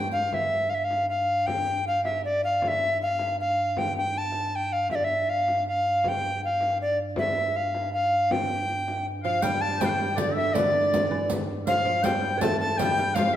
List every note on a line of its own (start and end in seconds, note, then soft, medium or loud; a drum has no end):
0.00 0.29 G2 medium
0.11 0.31 F5 medium
0.11 riq soft
0.11 frame drum soft
0.31 4.87 G2 medium
0.31 0.71 E5 medium
0.31 0.35 F5 medium
0.31 frame drum medium
0.70 0.76 F5 medium
0.75 0.86 E5 medium
0.84 1.09 F5 medium
0.91 frame drum medium
1.09 1.48 F5 medium
1.47 1.85 G5 medium
1.47 frame drum medium
1.87 2.04 F5 medium
2.05 2.22 E5 medium
2.05 frame drum medium
2.25 2.42 D5 medium
2.44 2.63 F5 medium
2.62 2.69 F5 medium
2.62 frame drum medium
2.68 3.00 E5 medium
3.02 3.36 F5 medium
3.19 frame drum medium
3.40 3.80 F5 medium
3.77 3.96 G5 medium
3.77 frame drum medium
3.98 4.19 G5 medium
4.15 4.57 A5 medium
4.15 frame drum soft
4.32 frame drum medium
4.56 4.74 G5 medium
4.73 4.91 F5 medium
4.89 9.42 G2 medium
4.89 4.97 E5 medium
4.89 frame drum medium
4.95 5.06 D5 medium
5.04 5.31 E5 medium
5.29 5.66 F5 medium
5.48 frame drum medium
5.68 6.10 F5 medium
6.04 frame drum medium
6.08 6.44 G5 loud
6.45 6.78 F5 medium
6.61 frame drum medium
6.82 6.98 D5 medium
7.16 7.58 E5 medium
7.16 frame drum medium
7.56 7.93 F5 medium
7.75 frame drum medium
7.93 8.33 F5 medium
8.31 9.06 G5 medium
8.31 frame drum medium
8.88 frame drum medium
9.23 9.43 F3 medium
9.23 9.44 F5 medium
9.42 13.36 G2 medium
9.42 9.80 G3 medium
9.42 9.63 G5 loud
9.42 riq medium
9.42 frame drum medium
9.61 9.78 A5 medium
9.61 9.82 A5 loud
9.61 frame drum soft
9.78 10.20 G3 medium
9.78 9.87 G5 medium
9.78 10.20 G5 loud
9.78 riq medium
9.78 frame drum medium
9.85 9.91 F5 medium
9.90 10.15 G5 medium
10.16 10.53 D3 medium
10.16 10.35 D5 medium
10.16 10.36 D5 medium
10.16 riq medium
10.16 frame drum medium
10.33 10.56 E5 medium
10.39 frame drum soft
10.54 11.10 D3 medium
10.54 11.30 D5 medium
10.54 riq medium
10.54 frame drum medium
10.76 frame drum soft
10.94 riq medium
10.94 frame drum medium
11.11 11.28 E3 medium
11.30 riq medium
11.30 frame drum medium
11.49 frame drum soft
11.67 11.84 F3 medium
11.67 12.05 F5 medium
11.67 12.06 F5 loud
11.67 riq medium
11.67 frame drum medium
11.85 12.04 F3 medium
11.85 frame drum soft
12.03 12.36 G3 medium
12.03 12.42 G5 medium
12.03 12.43 G5 loud
12.03 riq medium
12.03 frame drum medium
12.38 12.42 B3 medium
12.38 12.79 A5 medium
12.38 12.59 A5 loud
12.38 riq medium
12.42 12.81 A3 medium
12.42 frame drum loud
12.60 12.80 A5 loud
12.60 frame drum soft
12.77 12.98 G3 medium
12.77 13.16 G5 medium
12.77 13.16 G5 loud
12.77 riq medium
12.77 frame drum loud
12.98 13.16 G3 medium
12.98 riq soft
13.14 13.36 F3 medium
13.14 13.36 F5 medium
13.14 13.35 F5 medium
13.14 riq medium
13.14 frame drum medium